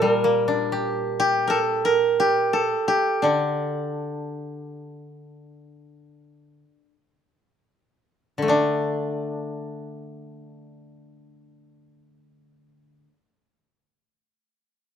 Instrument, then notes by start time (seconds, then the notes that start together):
koto
Already playing: A#2 A4
0.02 G3
0.10 A#4
0.24 A#3
0.48 D4
0.72 G4
1.20 G4
1.47 A4 A#4
1.85 A#4
2.20 G4
2.53 A4
2.88 G4
3.22 D3 D4
8.38 D3
8.42 A3
8.48 D4